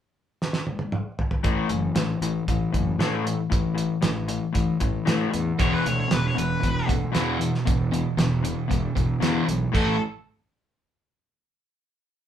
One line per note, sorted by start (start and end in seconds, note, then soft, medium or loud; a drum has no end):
0.42 snare medium
0.53 snare medium
0.67 high tom medium
0.79 high tom medium
0.92 mid tom medium
1.19 floor tom medium
1.31 floor tom medium
1.43 1.62 A1 medium
1.43 1.68 A2 medium
1.43 1.69 E3 medium
1.43 1.69 A3 medium
1.43 kick medium
1.43 closed hi-hat medium
1.69 1.88 F#1 medium
1.69 1.94 A2 medium
1.69 1.94 E3 medium
1.69 closed hi-hat medium
1.95 2.13 A1 medium
1.95 2.19 A2 medium
1.95 2.19 E3 medium
1.95 snare loud
1.95 closed hi-hat medium
2.21 2.39 A1 medium
2.21 2.46 A2 medium
2.21 2.46 E3 medium
2.21 closed hi-hat medium
2.48 2.66 A1 medium
2.48 2.71 A2 medium
2.48 2.72 E3 medium
2.48 kick medium
2.48 closed hi-hat medium
2.72 2.92 F#1 medium
2.72 2.97 A2 medium
2.72 2.97 E3 medium
2.72 kick medium
2.72 closed hi-hat medium
2.98 3.34 A2 medium
2.98 3.24 A2 medium
2.98 3.24 E3 medium
2.98 3.25 A3 medium
2.98 snare medium
2.98 closed hi-hat medium
3.25 3.49 A2 medium
3.25 3.49 E3 medium
3.25 closed hi-hat medium
3.50 3.87 A1 medium
3.50 3.73 A2 medium
3.50 3.74 E3 medium
3.50 kick medium
3.50 closed hi-hat medium
3.75 4.00 A2 medium
3.75 4.00 E3 medium
3.75 closed hi-hat medium
4.02 4.38 A1 medium
4.02 4.26 A2 medium
4.02 4.26 E3 medium
4.02 snare loud
4.02 closed hi-hat medium
4.28 4.51 A2 medium
4.28 4.52 E3 medium
4.28 closed hi-hat medium
4.53 4.73 A1 medium
4.53 4.77 A2 medium
4.53 4.78 E3 medium
4.53 kick medium
4.53 closed hi-hat medium
4.80 4.99 A1 medium
4.80 5.04 A2 medium
4.80 5.04 E3 medium
4.80 kick medium
4.80 closed hi-hat medium
5.05 5.30 A2 medium
5.05 5.25 A2 medium
5.05 5.30 E3 medium
5.05 5.31 A3 medium
5.05 snare medium
5.05 closed hi-hat medium
5.31 5.51 E2 medium
5.31 5.56 A2 medium
5.31 5.56 E3 medium
5.31 closed hi-hat medium
5.59 5.77 E1 medium
5.59 5.83 E2 medium
5.59 5.84 B2 medium
5.59 5.84 E3 medium
5.59 5.72 C#5 medium
5.59 kick loud
5.59 closed hi-hat medium
5.73 5.85 B4 medium
5.84 6.03 D2 medium
5.84 6.07 E2 medium
5.84 6.07 B2 medium
5.84 5.99 C#5 medium
5.84 closed hi-hat medium
6.00 6.14 C#5 medium
6.08 6.33 E2 medium
6.08 6.33 B2 medium
6.08 snare loud
6.08 closed hi-hat medium
6.12 6.29 E1 medium
6.12 6.25 B4 medium
6.28 6.38 C#5 medium
6.35 6.55 E1 medium
6.35 6.59 E2 medium
6.35 6.59 B2 medium
6.35 6.88 B4 medium
6.35 closed hi-hat medium
6.60 6.80 E1 medium
6.60 6.85 E2 medium
6.60 6.85 B2 medium
6.60 kick medium
6.60 closed hi-hat medium
6.87 7.06 D2 medium
6.87 7.11 E2 medium
6.87 7.11 B2 medium
6.87 kick medium
6.87 closed hi-hat medium
7.12 7.37 E2 medium
7.12 7.49 E2 medium
7.12 7.38 B2 medium
7.12 7.38 E3 medium
7.12 snare medium
7.12 closed hi-hat medium
7.39 7.63 E2 medium
7.39 7.63 B2 medium
7.39 closed hi-hat medium
7.55 snare soft
7.65 8.02 E1 medium
7.65 7.89 E2 medium
7.65 7.89 B2 medium
7.65 kick loud
7.65 closed hi-hat medium
7.92 8.15 E2 medium
7.92 8.15 B2 medium
7.92 closed hi-hat medium
8.17 8.52 E1 medium
8.17 8.41 E2 medium
8.17 8.41 B2 medium
8.17 snare medium
8.17 closed hi-hat medium
8.43 8.67 E2 medium
8.43 8.67 B2 medium
8.43 closed hi-hat medium
8.68 8.88 E1 medium
8.68 8.92 E2 medium
8.68 8.93 B2 medium
8.68 kick medium
8.68 closed hi-hat medium
8.96 9.14 E1 medium
8.96 9.19 E2 medium
8.96 9.19 B2 medium
8.96 kick medium
8.96 closed hi-hat medium
9.20 9.44 E2 medium
9.20 9.39 E2 medium
9.20 9.45 B2 medium
9.20 9.46 E3 medium
9.20 snare medium
9.20 closed hi-hat medium
9.45 9.65 B1 medium
9.45 9.70 E2 medium
9.45 9.70 B2 medium
9.45 closed hi-hat medium
9.72 9.98 A1 medium
9.72 9.93 A2 medium
9.72 9.94 E3 medium
9.72 9.94 A3 loud
9.72 9.95 C#4 medium
9.72 9.95 E4 loud
9.72 9.98 A4 medium
9.72 kick medium
9.72 crash medium